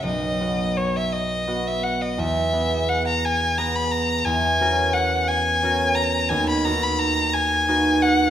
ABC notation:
X:1
M:12/8
L:1/16
Q:3/8=58
K:B
V:1 name="Violin"
d4 c e d3 e f d e4 f a g2 a b a2 | g4 f2 g4 a2 g b a b a2 g4 f2 |]
V:2 name="Harp"
[B,,,F]2 [B,FB]6 [B,FB]4 E,,2 [B,GB]6 [B,GB]4 | E,,2 [CFA]6 [CFA]4 D,,2 [DFB]6 [DFB]4 |]